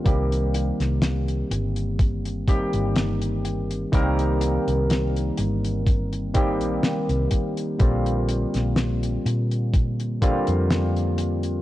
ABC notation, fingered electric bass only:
X:1
M:4/4
L:1/16
Q:"Swing 16ths" 1/4=62
K:Cdor
V:1 name="Fingered electric bass" clef=bass
C,,3 C,,3 G,,,4- G,,, G,,,4- G,,, | C,,3 C,,3 G,,,4- G,,, B,,, z C,, z2 | B,,,3 B,,,3 B,,4- B,, F,,4- F,, |]